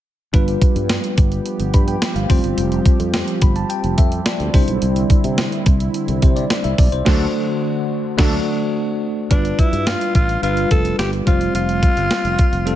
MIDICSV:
0, 0, Header, 1, 7, 480
1, 0, Start_track
1, 0, Tempo, 560748
1, 286, Time_signature, 4, 2, 24, 8
1, 10918, End_track
2, 0, Start_track
2, 0, Title_t, "Alto saxophone"
2, 0, Program_c, 0, 65
2, 7973, Note_on_c, 0, 62, 83
2, 8214, Note_on_c, 0, 64, 80
2, 8227, Note_off_c, 0, 62, 0
2, 8452, Note_on_c, 0, 65, 81
2, 8465, Note_off_c, 0, 64, 0
2, 8689, Note_off_c, 0, 65, 0
2, 8693, Note_on_c, 0, 65, 82
2, 8913, Note_off_c, 0, 65, 0
2, 8930, Note_on_c, 0, 65, 86
2, 9151, Note_off_c, 0, 65, 0
2, 9171, Note_on_c, 0, 69, 88
2, 9392, Note_off_c, 0, 69, 0
2, 9406, Note_on_c, 0, 67, 90
2, 9514, Note_off_c, 0, 67, 0
2, 9648, Note_on_c, 0, 65, 75
2, 9870, Note_off_c, 0, 65, 0
2, 9888, Note_on_c, 0, 65, 93
2, 10918, Note_off_c, 0, 65, 0
2, 10918, End_track
3, 0, Start_track
3, 0, Title_t, "Tine electric piano"
3, 0, Program_c, 1, 4
3, 282, Note_on_c, 1, 55, 81
3, 285, Note_on_c, 1, 62, 74
3, 289, Note_on_c, 1, 65, 70
3, 294, Note_on_c, 1, 71, 91
3, 427, Control_c, 1, 64, 127
3, 1035, Note_off_c, 1, 55, 0
3, 1037, Note_off_c, 1, 62, 0
3, 1039, Note_off_c, 1, 65, 0
3, 1041, Note_off_c, 1, 71, 0
3, 1488, Note_on_c, 1, 83, 60
3, 1601, Note_off_c, 1, 83, 0
3, 1609, Note_on_c, 1, 79, 67
3, 1836, Note_off_c, 1, 79, 0
3, 1845, Note_on_c, 1, 77, 61
3, 1960, Note_on_c, 1, 55, 79
3, 1963, Note_on_c, 1, 60, 72
3, 1967, Note_on_c, 1, 65, 70
3, 1969, Note_on_c, 1, 72, 85
3, 1977, Control_c, 1, 64, 0
3, 2074, Note_off_c, 1, 77, 0
3, 2132, Control_c, 1, 64, 127
3, 2731, Note_off_c, 1, 55, 0
3, 2732, Note_off_c, 1, 60, 0
3, 2734, Note_off_c, 1, 65, 0
3, 2735, Note_off_c, 1, 72, 0
3, 2928, Note_on_c, 1, 83, 62
3, 3039, Note_off_c, 1, 83, 0
3, 3047, Note_on_c, 1, 81, 65
3, 3158, Note_off_c, 1, 81, 0
3, 3162, Note_on_c, 1, 79, 71
3, 3387, Note_off_c, 1, 79, 0
3, 3404, Note_on_c, 1, 76, 70
3, 3628, Note_off_c, 1, 76, 0
3, 3643, Note_on_c, 1, 74, 70
3, 3882, Note_on_c, 1, 55, 80
3, 3884, Note_on_c, 1, 62, 74
3, 3887, Note_on_c, 1, 64, 76
3, 3893, Note_on_c, 1, 72, 88
3, 3898, Control_c, 1, 64, 0
3, 4063, Control_c, 1, 64, 127
3, 4091, Note_off_c, 1, 74, 0
3, 4652, Note_off_c, 1, 55, 0
3, 4653, Note_off_c, 1, 62, 0
3, 4655, Note_off_c, 1, 64, 0
3, 4657, Note_off_c, 1, 72, 0
3, 5327, Note_on_c, 1, 72, 56
3, 5440, Note_off_c, 1, 72, 0
3, 5444, Note_on_c, 1, 74, 68
3, 5673, Note_off_c, 1, 74, 0
3, 5683, Note_on_c, 1, 76, 67
3, 5799, Note_off_c, 1, 76, 0
3, 5807, Note_on_c, 1, 74, 65
3, 5920, Note_off_c, 1, 74, 0
3, 5925, Note_on_c, 1, 72, 64
3, 6034, Note_off_c, 1, 72, 0
3, 6036, Note_on_c, 1, 57, 93
3, 6038, Note_on_c, 1, 62, 98
3, 6041, Note_on_c, 1, 66, 95
3, 6045, Note_on_c, 1, 72, 93
3, 6055, Control_c, 1, 64, 0
3, 6203, Note_off_c, 1, 57, 0
3, 6205, Note_off_c, 1, 62, 0
3, 6206, Note_off_c, 1, 66, 0
3, 6207, Control_c, 1, 64, 127
3, 6209, Note_off_c, 1, 72, 0
3, 6997, Note_on_c, 1, 57, 98
3, 7002, Note_on_c, 1, 62, 99
3, 7007, Note_on_c, 1, 66, 102
3, 7164, Note_off_c, 1, 57, 0
3, 7167, Note_off_c, 1, 62, 0
3, 7170, Note_off_c, 1, 66, 0
3, 7960, Note_on_c, 1, 55, 65
3, 7965, Note_on_c, 1, 62, 63
3, 7968, Note_on_c, 1, 65, 60
3, 7971, Note_on_c, 1, 71, 76
3, 7977, Control_c, 1, 64, 0
3, 8116, Control_c, 1, 64, 127
3, 8714, Note_off_c, 1, 55, 0
3, 8717, Note_off_c, 1, 62, 0
3, 8718, Note_off_c, 1, 65, 0
3, 8720, Note_off_c, 1, 71, 0
3, 8919, Note_on_c, 1, 55, 67
3, 8923, Note_on_c, 1, 62, 62
3, 8926, Note_on_c, 1, 65, 64
3, 8931, Note_on_c, 1, 71, 75
3, 9486, Note_off_c, 1, 55, 0
3, 9488, Note_off_c, 1, 62, 0
3, 9489, Note_off_c, 1, 65, 0
3, 9492, Note_off_c, 1, 71, 0
3, 9638, Note_on_c, 1, 55, 68
3, 9644, Note_on_c, 1, 60, 59
3, 9645, Note_on_c, 1, 65, 59
3, 9651, Note_on_c, 1, 72, 72
3, 9658, Control_c, 1, 64, 0
3, 9812, Control_c, 1, 64, 127
3, 10410, Note_off_c, 1, 55, 0
3, 10413, Note_off_c, 1, 60, 0
3, 10414, Note_off_c, 1, 65, 0
3, 10416, Note_off_c, 1, 72, 0
3, 10834, Note_on_c, 1, 55, 81
3, 10836, Note_on_c, 1, 60, 73
3, 10840, Note_on_c, 1, 65, 77
3, 10844, Note_on_c, 1, 69, 93
3, 10918, Note_off_c, 1, 55, 0
3, 10918, Note_off_c, 1, 60, 0
3, 10918, Note_off_c, 1, 65, 0
3, 10918, Note_off_c, 1, 69, 0
3, 10918, End_track
4, 0, Start_track
4, 0, Title_t, "Analog polysynth"
4, 0, Program_c, 2, 90
4, 6045, Note_on_c, 2, 54, 99
4, 6045, Note_on_c, 2, 69, 102
4, 6046, Note_on_c, 2, 62, 105
4, 6209, Note_off_c, 2, 54, 0
4, 6209, Note_off_c, 2, 62, 0
4, 6209, Note_off_c, 2, 69, 0
4, 7006, Note_on_c, 2, 62, 102
4, 7006, Note_on_c, 2, 69, 99
4, 7007, Note_on_c, 2, 54, 100
4, 7169, Note_off_c, 2, 62, 0
4, 7169, Note_off_c, 2, 69, 0
4, 7170, Note_off_c, 2, 54, 0
4, 10918, End_track
5, 0, Start_track
5, 0, Title_t, "Analog synth pad"
5, 0, Program_c, 3, 89
5, 281, Note_on_c, 3, 67, 91
5, 285, Note_on_c, 3, 53, 82
5, 285, Note_on_c, 3, 59, 75
5, 1949, Note_off_c, 3, 59, 0
5, 1970, Note_on_c, 3, 60, 74
5, 3849, Note_off_c, 3, 67, 0
5, 3851, Note_off_c, 3, 53, 0
5, 3893, Note_on_c, 3, 50, 80
5, 3893, Note_on_c, 3, 64, 90
5, 6028, Note_off_c, 3, 50, 0
5, 6028, Note_off_c, 3, 64, 0
5, 6045, Note_on_c, 3, 50, 82
5, 6045, Note_on_c, 3, 66, 87
5, 7934, Note_off_c, 3, 60, 0
5, 7946, Note_off_c, 3, 50, 0
5, 7947, Note_off_c, 3, 66, 0
5, 10918, End_track
6, 0, Start_track
6, 0, Title_t, "Fretless electric bass"
6, 0, Program_c, 4, 35
6, 290, Note_on_c, 4, 31, 86
6, 468, Note_off_c, 4, 31, 0
6, 648, Note_on_c, 4, 43, 92
6, 827, Note_off_c, 4, 43, 0
6, 1009, Note_on_c, 4, 31, 92
6, 1188, Note_off_c, 4, 31, 0
6, 1369, Note_on_c, 4, 31, 85
6, 1458, Note_off_c, 4, 31, 0
6, 1490, Note_on_c, 4, 43, 91
6, 1669, Note_off_c, 4, 43, 0
6, 1845, Note_on_c, 4, 31, 85
6, 1935, Note_off_c, 4, 31, 0
6, 1967, Note_on_c, 4, 29, 86
6, 2056, Note_off_c, 4, 29, 0
6, 2088, Note_on_c, 4, 31, 75
6, 2177, Note_off_c, 4, 31, 0
6, 2205, Note_on_c, 4, 29, 93
6, 2386, Note_off_c, 4, 29, 0
6, 2566, Note_on_c, 4, 41, 89
6, 2746, Note_off_c, 4, 41, 0
6, 2926, Note_on_c, 4, 31, 79
6, 3106, Note_off_c, 4, 31, 0
6, 3287, Note_on_c, 4, 29, 87
6, 3377, Note_off_c, 4, 29, 0
6, 3408, Note_on_c, 4, 41, 91
6, 3587, Note_off_c, 4, 41, 0
6, 3767, Note_on_c, 4, 38, 75
6, 3856, Note_off_c, 4, 38, 0
6, 3886, Note_on_c, 4, 36, 84
6, 3976, Note_off_c, 4, 36, 0
6, 4009, Note_on_c, 4, 35, 85
6, 4098, Note_off_c, 4, 35, 0
6, 4130, Note_on_c, 4, 36, 99
6, 4308, Note_off_c, 4, 36, 0
6, 4488, Note_on_c, 4, 48, 87
6, 4667, Note_off_c, 4, 48, 0
6, 4848, Note_on_c, 4, 36, 79
6, 5028, Note_off_c, 4, 36, 0
6, 5209, Note_on_c, 4, 36, 89
6, 5298, Note_off_c, 4, 36, 0
6, 5330, Note_on_c, 4, 48, 92
6, 5509, Note_off_c, 4, 48, 0
6, 5691, Note_on_c, 4, 36, 78
6, 5779, Note_off_c, 4, 36, 0
6, 5808, Note_on_c, 4, 35, 85
6, 5897, Note_off_c, 4, 35, 0
6, 5931, Note_on_c, 4, 36, 78
6, 6019, Note_off_c, 4, 36, 0
6, 6045, Note_on_c, 4, 38, 92
6, 6209, Note_off_c, 4, 38, 0
6, 7006, Note_on_c, 4, 38, 93
6, 7169, Note_off_c, 4, 38, 0
6, 7967, Note_on_c, 4, 31, 85
6, 8147, Note_off_c, 4, 31, 0
6, 8325, Note_on_c, 4, 43, 82
6, 8505, Note_off_c, 4, 43, 0
6, 8690, Note_on_c, 4, 33, 71
6, 8868, Note_off_c, 4, 33, 0
6, 8926, Note_on_c, 4, 31, 80
6, 9106, Note_off_c, 4, 31, 0
6, 9169, Note_on_c, 4, 29, 75
6, 9348, Note_off_c, 4, 29, 0
6, 9405, Note_on_c, 4, 31, 81
6, 9585, Note_off_c, 4, 31, 0
6, 9647, Note_on_c, 4, 29, 86
6, 9826, Note_off_c, 4, 29, 0
6, 9882, Note_on_c, 4, 29, 83
6, 10154, Note_off_c, 4, 29, 0
6, 10243, Note_on_c, 4, 31, 75
6, 10334, Note_off_c, 4, 31, 0
6, 10482, Note_on_c, 4, 29, 82
6, 10574, Note_off_c, 4, 29, 0
6, 10721, Note_on_c, 4, 29, 85
6, 10903, Note_off_c, 4, 29, 0
6, 10918, End_track
7, 0, Start_track
7, 0, Title_t, "Drums"
7, 288, Note_on_c, 9, 42, 83
7, 289, Note_on_c, 9, 36, 107
7, 373, Note_off_c, 9, 42, 0
7, 374, Note_off_c, 9, 36, 0
7, 410, Note_on_c, 9, 42, 48
7, 495, Note_off_c, 9, 42, 0
7, 527, Note_on_c, 9, 36, 88
7, 530, Note_on_c, 9, 42, 66
7, 613, Note_off_c, 9, 36, 0
7, 615, Note_off_c, 9, 42, 0
7, 650, Note_on_c, 9, 42, 48
7, 736, Note_off_c, 9, 42, 0
7, 766, Note_on_c, 9, 38, 103
7, 766, Note_on_c, 9, 42, 94
7, 852, Note_off_c, 9, 38, 0
7, 852, Note_off_c, 9, 42, 0
7, 889, Note_on_c, 9, 42, 48
7, 974, Note_off_c, 9, 42, 0
7, 1006, Note_on_c, 9, 42, 82
7, 1008, Note_on_c, 9, 36, 101
7, 1092, Note_off_c, 9, 42, 0
7, 1093, Note_off_c, 9, 36, 0
7, 1127, Note_on_c, 9, 42, 43
7, 1212, Note_off_c, 9, 42, 0
7, 1246, Note_on_c, 9, 42, 72
7, 1332, Note_off_c, 9, 42, 0
7, 1366, Note_on_c, 9, 42, 44
7, 1452, Note_off_c, 9, 42, 0
7, 1486, Note_on_c, 9, 42, 72
7, 1489, Note_on_c, 9, 36, 82
7, 1572, Note_off_c, 9, 42, 0
7, 1574, Note_off_c, 9, 36, 0
7, 1607, Note_on_c, 9, 42, 48
7, 1692, Note_off_c, 9, 42, 0
7, 1728, Note_on_c, 9, 38, 93
7, 1729, Note_on_c, 9, 42, 91
7, 1814, Note_off_c, 9, 38, 0
7, 1814, Note_off_c, 9, 42, 0
7, 1848, Note_on_c, 9, 42, 40
7, 1933, Note_off_c, 9, 42, 0
7, 1967, Note_on_c, 9, 36, 98
7, 1968, Note_on_c, 9, 46, 71
7, 2052, Note_off_c, 9, 36, 0
7, 2054, Note_off_c, 9, 46, 0
7, 2088, Note_on_c, 9, 42, 48
7, 2173, Note_off_c, 9, 42, 0
7, 2206, Note_on_c, 9, 42, 88
7, 2292, Note_off_c, 9, 42, 0
7, 2326, Note_on_c, 9, 42, 51
7, 2412, Note_off_c, 9, 42, 0
7, 2444, Note_on_c, 9, 36, 84
7, 2444, Note_on_c, 9, 42, 68
7, 2530, Note_off_c, 9, 36, 0
7, 2530, Note_off_c, 9, 42, 0
7, 2566, Note_on_c, 9, 42, 52
7, 2652, Note_off_c, 9, 42, 0
7, 2685, Note_on_c, 9, 38, 104
7, 2685, Note_on_c, 9, 42, 96
7, 2770, Note_off_c, 9, 38, 0
7, 2770, Note_off_c, 9, 42, 0
7, 2805, Note_on_c, 9, 42, 52
7, 2890, Note_off_c, 9, 42, 0
7, 2923, Note_on_c, 9, 42, 85
7, 2926, Note_on_c, 9, 36, 95
7, 3009, Note_off_c, 9, 42, 0
7, 3012, Note_off_c, 9, 36, 0
7, 3045, Note_on_c, 9, 42, 43
7, 3130, Note_off_c, 9, 42, 0
7, 3166, Note_on_c, 9, 42, 74
7, 3252, Note_off_c, 9, 42, 0
7, 3285, Note_on_c, 9, 42, 46
7, 3371, Note_off_c, 9, 42, 0
7, 3405, Note_on_c, 9, 42, 74
7, 3408, Note_on_c, 9, 36, 83
7, 3491, Note_off_c, 9, 42, 0
7, 3493, Note_off_c, 9, 36, 0
7, 3525, Note_on_c, 9, 42, 48
7, 3610, Note_off_c, 9, 42, 0
7, 3645, Note_on_c, 9, 38, 97
7, 3645, Note_on_c, 9, 42, 90
7, 3730, Note_off_c, 9, 38, 0
7, 3731, Note_off_c, 9, 42, 0
7, 3765, Note_on_c, 9, 42, 41
7, 3851, Note_off_c, 9, 42, 0
7, 3885, Note_on_c, 9, 36, 93
7, 3886, Note_on_c, 9, 46, 74
7, 3971, Note_off_c, 9, 36, 0
7, 3971, Note_off_c, 9, 46, 0
7, 4004, Note_on_c, 9, 42, 51
7, 4090, Note_off_c, 9, 42, 0
7, 4124, Note_on_c, 9, 42, 83
7, 4210, Note_off_c, 9, 42, 0
7, 4246, Note_on_c, 9, 42, 52
7, 4332, Note_off_c, 9, 42, 0
7, 4365, Note_on_c, 9, 36, 85
7, 4366, Note_on_c, 9, 42, 64
7, 4451, Note_off_c, 9, 36, 0
7, 4452, Note_off_c, 9, 42, 0
7, 4487, Note_on_c, 9, 42, 52
7, 4572, Note_off_c, 9, 42, 0
7, 4605, Note_on_c, 9, 38, 110
7, 4605, Note_on_c, 9, 42, 94
7, 4690, Note_off_c, 9, 38, 0
7, 4690, Note_off_c, 9, 42, 0
7, 4729, Note_on_c, 9, 42, 49
7, 4814, Note_off_c, 9, 42, 0
7, 4845, Note_on_c, 9, 42, 82
7, 4847, Note_on_c, 9, 36, 97
7, 4930, Note_off_c, 9, 42, 0
7, 4933, Note_off_c, 9, 36, 0
7, 4967, Note_on_c, 9, 42, 42
7, 5053, Note_off_c, 9, 42, 0
7, 5087, Note_on_c, 9, 42, 74
7, 5173, Note_off_c, 9, 42, 0
7, 5206, Note_on_c, 9, 42, 42
7, 5292, Note_off_c, 9, 42, 0
7, 5327, Note_on_c, 9, 42, 73
7, 5329, Note_on_c, 9, 36, 85
7, 5412, Note_off_c, 9, 42, 0
7, 5414, Note_off_c, 9, 36, 0
7, 5448, Note_on_c, 9, 42, 49
7, 5534, Note_off_c, 9, 42, 0
7, 5567, Note_on_c, 9, 38, 93
7, 5567, Note_on_c, 9, 42, 90
7, 5652, Note_off_c, 9, 38, 0
7, 5653, Note_off_c, 9, 42, 0
7, 5685, Note_on_c, 9, 42, 42
7, 5770, Note_off_c, 9, 42, 0
7, 5807, Note_on_c, 9, 36, 88
7, 5807, Note_on_c, 9, 46, 72
7, 5892, Note_off_c, 9, 36, 0
7, 5892, Note_off_c, 9, 46, 0
7, 5926, Note_on_c, 9, 42, 50
7, 6012, Note_off_c, 9, 42, 0
7, 6045, Note_on_c, 9, 38, 99
7, 6045, Note_on_c, 9, 49, 73
7, 6046, Note_on_c, 9, 36, 96
7, 6131, Note_off_c, 9, 38, 0
7, 6131, Note_off_c, 9, 49, 0
7, 6132, Note_off_c, 9, 36, 0
7, 7007, Note_on_c, 9, 36, 100
7, 7007, Note_on_c, 9, 38, 95
7, 7007, Note_on_c, 9, 49, 78
7, 7092, Note_off_c, 9, 36, 0
7, 7092, Note_off_c, 9, 38, 0
7, 7092, Note_off_c, 9, 49, 0
7, 7967, Note_on_c, 9, 36, 96
7, 7967, Note_on_c, 9, 42, 85
7, 8053, Note_off_c, 9, 36, 0
7, 8053, Note_off_c, 9, 42, 0
7, 8089, Note_on_c, 9, 42, 49
7, 8174, Note_off_c, 9, 42, 0
7, 8206, Note_on_c, 9, 36, 84
7, 8210, Note_on_c, 9, 42, 63
7, 8292, Note_off_c, 9, 36, 0
7, 8296, Note_off_c, 9, 42, 0
7, 8329, Note_on_c, 9, 42, 47
7, 8415, Note_off_c, 9, 42, 0
7, 8447, Note_on_c, 9, 38, 100
7, 8447, Note_on_c, 9, 42, 88
7, 8533, Note_off_c, 9, 38, 0
7, 8533, Note_off_c, 9, 42, 0
7, 8571, Note_on_c, 9, 42, 49
7, 8657, Note_off_c, 9, 42, 0
7, 8687, Note_on_c, 9, 42, 74
7, 8688, Note_on_c, 9, 36, 93
7, 8773, Note_off_c, 9, 42, 0
7, 8774, Note_off_c, 9, 36, 0
7, 8809, Note_on_c, 9, 42, 42
7, 8895, Note_off_c, 9, 42, 0
7, 8930, Note_on_c, 9, 42, 68
7, 9016, Note_off_c, 9, 42, 0
7, 9047, Note_on_c, 9, 42, 41
7, 9133, Note_off_c, 9, 42, 0
7, 9166, Note_on_c, 9, 42, 67
7, 9169, Note_on_c, 9, 36, 84
7, 9252, Note_off_c, 9, 42, 0
7, 9254, Note_off_c, 9, 36, 0
7, 9288, Note_on_c, 9, 42, 43
7, 9373, Note_off_c, 9, 42, 0
7, 9409, Note_on_c, 9, 38, 86
7, 9409, Note_on_c, 9, 42, 88
7, 9494, Note_off_c, 9, 38, 0
7, 9495, Note_off_c, 9, 42, 0
7, 9527, Note_on_c, 9, 42, 40
7, 9613, Note_off_c, 9, 42, 0
7, 9646, Note_on_c, 9, 36, 95
7, 9646, Note_on_c, 9, 42, 70
7, 9732, Note_off_c, 9, 36, 0
7, 9732, Note_off_c, 9, 42, 0
7, 9766, Note_on_c, 9, 42, 47
7, 9851, Note_off_c, 9, 42, 0
7, 9886, Note_on_c, 9, 42, 83
7, 9971, Note_off_c, 9, 42, 0
7, 10005, Note_on_c, 9, 42, 50
7, 10091, Note_off_c, 9, 42, 0
7, 10124, Note_on_c, 9, 36, 79
7, 10124, Note_on_c, 9, 42, 64
7, 10209, Note_off_c, 9, 36, 0
7, 10210, Note_off_c, 9, 42, 0
7, 10246, Note_on_c, 9, 42, 45
7, 10331, Note_off_c, 9, 42, 0
7, 10364, Note_on_c, 9, 38, 99
7, 10364, Note_on_c, 9, 42, 91
7, 10449, Note_off_c, 9, 38, 0
7, 10449, Note_off_c, 9, 42, 0
7, 10485, Note_on_c, 9, 42, 47
7, 10570, Note_off_c, 9, 42, 0
7, 10602, Note_on_c, 9, 42, 77
7, 10606, Note_on_c, 9, 36, 93
7, 10688, Note_off_c, 9, 42, 0
7, 10691, Note_off_c, 9, 36, 0
7, 10724, Note_on_c, 9, 42, 42
7, 10809, Note_off_c, 9, 42, 0
7, 10843, Note_on_c, 9, 42, 69
7, 10918, Note_off_c, 9, 42, 0
7, 10918, End_track
0, 0, End_of_file